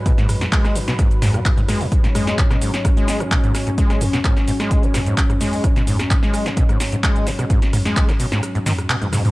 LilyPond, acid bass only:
\new Staff \with { instrumentName = "Acid bass" } { \clef bass \time 4/4 \key gis \minor \tempo 4 = 129 b,16 gis,16 r16 gis,16 gis8 gis,16 b,16 gis,16 r16 gis,16 b,16 gis,16 gis,16 gis16 gis,16 | r16 gis,16 gis8 gis,16 b,16 gis,16 r16 gis,16 gis8 gis,16 b,16 gis,16 r16 gis,16 | gis8 gis,16 b,16 gis,16 r16 gis,16 gis8 gis,16 b,16 gis,16 r16 gis,16 gis8 | gis,16 b,16 gis,16 r16 gis,16 gis8 gis,16 b,16 gis,16 r16 gis,16 gis8 gis,16 b,16 |
gis,16 r16 gis,16 gis8 gis,16 b,16 gis,16 r16 gis,16 dis16 r16 b,16 gis,16 gis,16 gis,16 | }